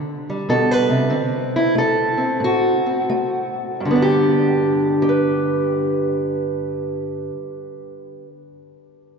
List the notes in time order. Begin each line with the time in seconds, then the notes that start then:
Already playing: D3
0.30 G3
0.49 B2 A4
0.71 B4
0.89 C3
1.10 D3 C4
1.56 E4
1.75 A3 A4
2.17 C4
2.40 A2
2.44 F#4
2.86 C4
3.10 A3
3.80 G2
3.85 D3
3.91 B3
3.95 D4
4.02 G4
5.02 G4
5.09 B4